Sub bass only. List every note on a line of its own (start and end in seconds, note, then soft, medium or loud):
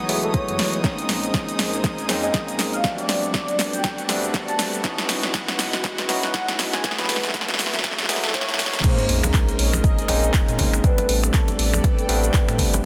0.09 0.30 F#1 medium
0.48 0.60 F#2 loud
0.59 0.80 E1 medium
1.09 1.30 A#1 loud
1.59 2.10 A#1 loud
2.09 2.30 F2 medium
2.48 2.57 A#1 loud
2.59 2.80 A#1 medium
3.09 3.30 A1 loud
3.59 4.10 A1 loud
4.09 4.30 E2 medium
4.48 4.57 A1 loud
4.59 4.80 A1 medium
5.09 5.30 C#2 loud
5.59 6.10 C#2 loud
6.09 6.30 G#1 medium
6.48 6.57 C#2 loud
6.59 6.80 C#2 medium
7.09 7.30 F#1 loud
7.59 8.10 F#1 loud
8.09 8.50 C#2 medium
8.48 8.57 F#1 medium
8.59 8.80 C#2 medium
9.09 9.30 A#1 loud
9.59 9.80 A#1 loud
10.09 10.30 A#1 medium
10.48 10.60 A#2 loud
10.59 10.80 G#1 medium
11.09 11.30 A1 loud
11.59 11.80 A1 loud
12.09 12.30 A1 medium
12.48 12.60 A2 loud
12.59 12.80 G1 medium